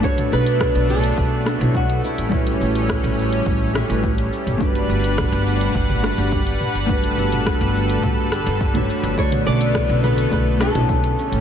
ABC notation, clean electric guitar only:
X:1
M:4/4
L:1/16
Q:1/4=105
K:Bm
V:1 name="Clean electric guitar"
[A,DEFc]8- [A,DEFc]2 [A,DEFe] [A,DEFc] z4 | [G,CEFB]8- [G,CEFB]2 [G,CEFe] [G,CEFB] z4 | [A,DFGB]8- [A,DFGB]2 [A,DFGe] [A,DFGB] z4 | [A,DFGB]8- [A,DFGB]2 z3 [A,DFGc]3 |
[D,A,EFd]8- [D,A,EFd]2 [A,DEFe] [A,DEFc] z4 |]